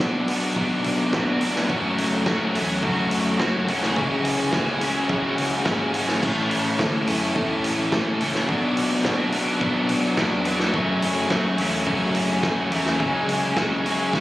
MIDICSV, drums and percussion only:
0, 0, Header, 1, 2, 480
1, 0, Start_track
1, 0, Tempo, 565504
1, 1438, Time_signature, 4, 2, 24, 8
1, 12056, End_track
2, 0, Start_track
2, 0, Title_t, "Drums"
2, 0, Note_on_c, 9, 36, 116
2, 0, Note_on_c, 9, 38, 115
2, 83, Note_off_c, 9, 36, 0
2, 83, Note_off_c, 9, 38, 0
2, 236, Note_on_c, 9, 46, 87
2, 321, Note_off_c, 9, 46, 0
2, 477, Note_on_c, 9, 36, 114
2, 562, Note_off_c, 9, 36, 0
2, 715, Note_on_c, 9, 46, 84
2, 800, Note_off_c, 9, 46, 0
2, 959, Note_on_c, 9, 36, 123
2, 959, Note_on_c, 9, 38, 121
2, 1044, Note_off_c, 9, 36, 0
2, 1044, Note_off_c, 9, 38, 0
2, 1194, Note_on_c, 9, 46, 90
2, 1279, Note_off_c, 9, 46, 0
2, 1322, Note_on_c, 9, 38, 75
2, 1407, Note_off_c, 9, 38, 0
2, 1441, Note_on_c, 9, 36, 112
2, 1526, Note_off_c, 9, 36, 0
2, 1684, Note_on_c, 9, 46, 86
2, 1768, Note_off_c, 9, 46, 0
2, 1919, Note_on_c, 9, 38, 107
2, 1920, Note_on_c, 9, 36, 118
2, 2004, Note_off_c, 9, 38, 0
2, 2005, Note_off_c, 9, 36, 0
2, 2166, Note_on_c, 9, 46, 82
2, 2251, Note_off_c, 9, 46, 0
2, 2402, Note_on_c, 9, 36, 117
2, 2486, Note_off_c, 9, 36, 0
2, 2640, Note_on_c, 9, 46, 80
2, 2725, Note_off_c, 9, 46, 0
2, 2881, Note_on_c, 9, 38, 125
2, 2882, Note_on_c, 9, 36, 120
2, 2966, Note_off_c, 9, 38, 0
2, 2967, Note_off_c, 9, 36, 0
2, 3126, Note_on_c, 9, 46, 77
2, 3211, Note_off_c, 9, 46, 0
2, 3247, Note_on_c, 9, 38, 74
2, 3332, Note_off_c, 9, 38, 0
2, 3364, Note_on_c, 9, 36, 107
2, 3449, Note_off_c, 9, 36, 0
2, 3605, Note_on_c, 9, 46, 82
2, 3690, Note_off_c, 9, 46, 0
2, 3839, Note_on_c, 9, 38, 111
2, 3843, Note_on_c, 9, 36, 112
2, 3924, Note_off_c, 9, 38, 0
2, 3928, Note_off_c, 9, 36, 0
2, 4084, Note_on_c, 9, 46, 81
2, 4169, Note_off_c, 9, 46, 0
2, 4324, Note_on_c, 9, 36, 111
2, 4409, Note_off_c, 9, 36, 0
2, 4566, Note_on_c, 9, 46, 79
2, 4651, Note_off_c, 9, 46, 0
2, 4799, Note_on_c, 9, 38, 120
2, 4803, Note_on_c, 9, 36, 123
2, 4883, Note_off_c, 9, 38, 0
2, 4888, Note_off_c, 9, 36, 0
2, 5040, Note_on_c, 9, 46, 85
2, 5125, Note_off_c, 9, 46, 0
2, 5161, Note_on_c, 9, 38, 77
2, 5246, Note_off_c, 9, 38, 0
2, 5286, Note_on_c, 9, 36, 114
2, 5287, Note_on_c, 9, 49, 98
2, 5371, Note_off_c, 9, 36, 0
2, 5372, Note_off_c, 9, 49, 0
2, 5525, Note_on_c, 9, 46, 89
2, 5610, Note_off_c, 9, 46, 0
2, 5766, Note_on_c, 9, 36, 116
2, 5767, Note_on_c, 9, 38, 109
2, 5851, Note_off_c, 9, 36, 0
2, 5852, Note_off_c, 9, 38, 0
2, 6004, Note_on_c, 9, 46, 89
2, 6089, Note_off_c, 9, 46, 0
2, 6247, Note_on_c, 9, 36, 111
2, 6332, Note_off_c, 9, 36, 0
2, 6485, Note_on_c, 9, 46, 81
2, 6570, Note_off_c, 9, 46, 0
2, 6725, Note_on_c, 9, 36, 114
2, 6725, Note_on_c, 9, 38, 125
2, 6810, Note_off_c, 9, 36, 0
2, 6810, Note_off_c, 9, 38, 0
2, 6965, Note_on_c, 9, 46, 82
2, 7050, Note_off_c, 9, 46, 0
2, 7084, Note_on_c, 9, 38, 74
2, 7169, Note_off_c, 9, 38, 0
2, 7204, Note_on_c, 9, 36, 108
2, 7289, Note_off_c, 9, 36, 0
2, 7442, Note_on_c, 9, 46, 83
2, 7527, Note_off_c, 9, 46, 0
2, 7678, Note_on_c, 9, 38, 114
2, 7680, Note_on_c, 9, 36, 112
2, 7763, Note_off_c, 9, 38, 0
2, 7765, Note_off_c, 9, 36, 0
2, 7914, Note_on_c, 9, 46, 83
2, 7999, Note_off_c, 9, 46, 0
2, 8159, Note_on_c, 9, 36, 115
2, 8243, Note_off_c, 9, 36, 0
2, 8393, Note_on_c, 9, 46, 80
2, 8478, Note_off_c, 9, 46, 0
2, 8635, Note_on_c, 9, 38, 118
2, 8636, Note_on_c, 9, 36, 122
2, 8720, Note_off_c, 9, 38, 0
2, 8721, Note_off_c, 9, 36, 0
2, 8871, Note_on_c, 9, 46, 85
2, 8956, Note_off_c, 9, 46, 0
2, 8991, Note_on_c, 9, 38, 76
2, 9076, Note_off_c, 9, 38, 0
2, 9115, Note_on_c, 9, 36, 109
2, 9199, Note_off_c, 9, 36, 0
2, 9356, Note_on_c, 9, 46, 86
2, 9441, Note_off_c, 9, 46, 0
2, 9594, Note_on_c, 9, 38, 114
2, 9595, Note_on_c, 9, 36, 113
2, 9679, Note_off_c, 9, 38, 0
2, 9680, Note_off_c, 9, 36, 0
2, 9830, Note_on_c, 9, 46, 88
2, 9915, Note_off_c, 9, 46, 0
2, 10073, Note_on_c, 9, 36, 120
2, 10158, Note_off_c, 9, 36, 0
2, 10309, Note_on_c, 9, 46, 84
2, 10394, Note_off_c, 9, 46, 0
2, 10553, Note_on_c, 9, 36, 122
2, 10553, Note_on_c, 9, 38, 123
2, 10638, Note_off_c, 9, 36, 0
2, 10638, Note_off_c, 9, 38, 0
2, 10794, Note_on_c, 9, 46, 81
2, 10879, Note_off_c, 9, 46, 0
2, 10915, Note_on_c, 9, 38, 79
2, 11000, Note_off_c, 9, 38, 0
2, 11035, Note_on_c, 9, 36, 108
2, 11120, Note_off_c, 9, 36, 0
2, 11278, Note_on_c, 9, 46, 85
2, 11363, Note_off_c, 9, 46, 0
2, 11515, Note_on_c, 9, 36, 118
2, 11515, Note_on_c, 9, 38, 117
2, 11600, Note_off_c, 9, 36, 0
2, 11600, Note_off_c, 9, 38, 0
2, 11762, Note_on_c, 9, 46, 76
2, 11847, Note_off_c, 9, 46, 0
2, 11997, Note_on_c, 9, 36, 110
2, 12000, Note_on_c, 9, 38, 68
2, 12056, Note_off_c, 9, 36, 0
2, 12056, Note_off_c, 9, 38, 0
2, 12056, End_track
0, 0, End_of_file